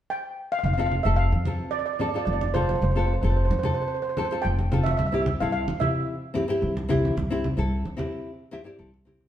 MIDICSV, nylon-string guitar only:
0, 0, Header, 1, 2, 480
1, 0, Start_track
1, 0, Key_signature, -1, "major"
1, 0, Tempo, 543478
1, 563, Time_signature, 4, 2, 24, 8
1, 8199, End_track
2, 0, Start_track
2, 0, Title_t, "Nylon-string guitar"
2, 0, Program_c, 0, 24
2, 686, Note_on_c, 0, 60, 64
2, 693, Note_on_c, 0, 65, 57
2, 701, Note_on_c, 0, 69, 73
2, 829, Note_off_c, 0, 60, 0
2, 833, Note_off_c, 0, 65, 0
2, 835, Note_off_c, 0, 69, 0
2, 925, Note_on_c, 0, 60, 67
2, 930, Note_on_c, 0, 65, 59
2, 936, Note_on_c, 0, 69, 70
2, 1144, Note_off_c, 0, 60, 0
2, 1147, Note_off_c, 0, 65, 0
2, 1150, Note_off_c, 0, 69, 0
2, 1289, Note_on_c, 0, 60, 60
2, 1297, Note_on_c, 0, 65, 54
2, 1302, Note_on_c, 0, 69, 62
2, 1580, Note_off_c, 0, 60, 0
2, 1583, Note_off_c, 0, 65, 0
2, 1586, Note_off_c, 0, 69, 0
2, 1758, Note_on_c, 0, 60, 60
2, 1766, Note_on_c, 0, 65, 63
2, 1774, Note_on_c, 0, 69, 71
2, 1839, Note_off_c, 0, 60, 0
2, 1843, Note_off_c, 0, 65, 0
2, 1847, Note_off_c, 0, 69, 0
2, 1890, Note_on_c, 0, 60, 65
2, 1898, Note_on_c, 0, 65, 54
2, 1904, Note_on_c, 0, 69, 67
2, 2108, Note_off_c, 0, 60, 0
2, 2112, Note_off_c, 0, 65, 0
2, 2115, Note_off_c, 0, 69, 0
2, 2241, Note_on_c, 0, 60, 69
2, 2248, Note_on_c, 0, 65, 64
2, 2258, Note_on_c, 0, 69, 74
2, 2464, Note_off_c, 0, 60, 0
2, 2467, Note_off_c, 0, 65, 0
2, 2472, Note_off_c, 0, 69, 0
2, 2608, Note_on_c, 0, 60, 65
2, 2613, Note_on_c, 0, 65, 57
2, 2620, Note_on_c, 0, 69, 73
2, 2753, Note_off_c, 0, 60, 0
2, 2755, Note_off_c, 0, 65, 0
2, 2759, Note_off_c, 0, 69, 0
2, 2850, Note_on_c, 0, 60, 65
2, 2857, Note_on_c, 0, 65, 53
2, 2864, Note_on_c, 0, 69, 67
2, 3069, Note_off_c, 0, 60, 0
2, 3072, Note_off_c, 0, 65, 0
2, 3076, Note_off_c, 0, 69, 0
2, 3208, Note_on_c, 0, 60, 60
2, 3212, Note_on_c, 0, 65, 50
2, 3221, Note_on_c, 0, 69, 69
2, 3501, Note_off_c, 0, 60, 0
2, 3503, Note_off_c, 0, 65, 0
2, 3507, Note_off_c, 0, 69, 0
2, 3681, Note_on_c, 0, 60, 69
2, 3686, Note_on_c, 0, 65, 59
2, 3693, Note_on_c, 0, 69, 75
2, 3762, Note_off_c, 0, 60, 0
2, 3765, Note_off_c, 0, 65, 0
2, 3768, Note_off_c, 0, 69, 0
2, 3805, Note_on_c, 0, 60, 60
2, 3814, Note_on_c, 0, 65, 53
2, 3818, Note_on_c, 0, 69, 68
2, 4026, Note_off_c, 0, 60, 0
2, 4031, Note_off_c, 0, 65, 0
2, 4033, Note_off_c, 0, 69, 0
2, 4165, Note_on_c, 0, 60, 69
2, 4170, Note_on_c, 0, 65, 65
2, 4180, Note_on_c, 0, 69, 76
2, 4386, Note_off_c, 0, 60, 0
2, 4389, Note_off_c, 0, 65, 0
2, 4393, Note_off_c, 0, 69, 0
2, 4522, Note_on_c, 0, 60, 66
2, 4529, Note_on_c, 0, 64, 58
2, 4538, Note_on_c, 0, 67, 68
2, 4670, Note_off_c, 0, 60, 0
2, 4673, Note_off_c, 0, 64, 0
2, 4678, Note_off_c, 0, 67, 0
2, 4772, Note_on_c, 0, 60, 65
2, 4780, Note_on_c, 0, 64, 59
2, 4788, Note_on_c, 0, 69, 71
2, 4989, Note_off_c, 0, 60, 0
2, 4993, Note_off_c, 0, 64, 0
2, 4997, Note_off_c, 0, 69, 0
2, 5118, Note_on_c, 0, 60, 56
2, 5126, Note_on_c, 0, 64, 58
2, 5135, Note_on_c, 0, 67, 61
2, 5414, Note_off_c, 0, 60, 0
2, 5418, Note_off_c, 0, 64, 0
2, 5422, Note_off_c, 0, 67, 0
2, 5597, Note_on_c, 0, 60, 66
2, 5606, Note_on_c, 0, 64, 57
2, 5613, Note_on_c, 0, 67, 81
2, 5678, Note_off_c, 0, 60, 0
2, 5683, Note_off_c, 0, 64, 0
2, 5686, Note_off_c, 0, 67, 0
2, 5722, Note_on_c, 0, 60, 78
2, 5733, Note_on_c, 0, 64, 64
2, 5740, Note_on_c, 0, 67, 87
2, 5943, Note_off_c, 0, 60, 0
2, 5948, Note_off_c, 0, 64, 0
2, 5952, Note_off_c, 0, 67, 0
2, 6081, Note_on_c, 0, 60, 85
2, 6088, Note_on_c, 0, 64, 76
2, 6096, Note_on_c, 0, 67, 89
2, 6301, Note_off_c, 0, 60, 0
2, 6305, Note_off_c, 0, 64, 0
2, 6308, Note_off_c, 0, 67, 0
2, 6451, Note_on_c, 0, 60, 78
2, 6459, Note_on_c, 0, 64, 72
2, 6465, Note_on_c, 0, 67, 85
2, 6591, Note_off_c, 0, 60, 0
2, 6595, Note_off_c, 0, 64, 0
2, 6598, Note_off_c, 0, 67, 0
2, 6684, Note_on_c, 0, 60, 75
2, 6691, Note_on_c, 0, 64, 67
2, 6700, Note_on_c, 0, 69, 88
2, 6902, Note_off_c, 0, 60, 0
2, 6905, Note_off_c, 0, 64, 0
2, 6910, Note_off_c, 0, 69, 0
2, 7036, Note_on_c, 0, 60, 73
2, 7042, Note_on_c, 0, 64, 66
2, 7047, Note_on_c, 0, 67, 86
2, 7329, Note_off_c, 0, 60, 0
2, 7332, Note_off_c, 0, 64, 0
2, 7335, Note_off_c, 0, 67, 0
2, 7519, Note_on_c, 0, 60, 78
2, 7525, Note_on_c, 0, 64, 71
2, 7530, Note_on_c, 0, 76, 66
2, 7534, Note_on_c, 0, 67, 87
2, 7595, Note_off_c, 0, 60, 0
2, 7599, Note_off_c, 0, 64, 0
2, 7603, Note_off_c, 0, 67, 0
2, 7631, Note_on_c, 0, 60, 70
2, 7639, Note_off_c, 0, 76, 0
2, 7640, Note_on_c, 0, 64, 72
2, 7642, Note_on_c, 0, 74, 56
2, 7650, Note_on_c, 0, 67, 89
2, 7751, Note_off_c, 0, 74, 0
2, 7762, Note_on_c, 0, 69, 62
2, 7853, Note_off_c, 0, 60, 0
2, 7858, Note_off_c, 0, 64, 0
2, 7863, Note_off_c, 0, 67, 0
2, 7994, Note_on_c, 0, 60, 79
2, 8005, Note_on_c, 0, 64, 76
2, 8009, Note_on_c, 0, 67, 89
2, 8199, Note_off_c, 0, 60, 0
2, 8199, Note_off_c, 0, 64, 0
2, 8199, Note_off_c, 0, 67, 0
2, 8199, Note_off_c, 0, 69, 0
2, 8199, End_track
0, 0, End_of_file